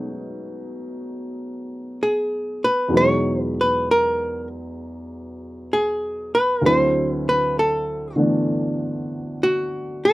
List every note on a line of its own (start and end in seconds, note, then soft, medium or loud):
0.00 2.88 B2 soft
0.00 2.90 F#3 soft
0.00 2.91 G#3 soft
0.00 2.92 A3 soft
0.00 2.93 C#4 soft
0.00 2.10 D#4 medium
0.00 2.92 D#4 soft
2.03 2.65 G#4 medium
2.64 2.95 B4 medium
2.88 6.62 E2 soft
2.88 6.63 B2 soft
2.88 6.62 F#3 soft
2.92 6.64 G#3 soft
2.92 6.65 D#4 soft
2.97 3.43 C#5 medium
3.43 3.53 B4 medium
3.61 3.90 B4 medium
3.91 4.47 A#4 medium
5.73 6.34 G#4 medium
6.35 6.65 B4 medium
6.61 10.13 D2 soft
6.61 8.14 D3 soft
6.61 10.13 F#3 soft
6.66 10.13 C4 soft
6.66 10.13 E4 soft
6.66 7.13 C5 medium
7.13 7.29 B4 medium
7.29 7.59 B4 medium
7.59 8.15 A4 medium
8.16 10.13 D3 soft
8.16 10.13 E3 soft
8.16 10.13 A3 soft
8.16 10.13 B3 soft
8.16 10.13 D4 soft
9.43 10.06 F#4 medium
10.05 10.13 A4 medium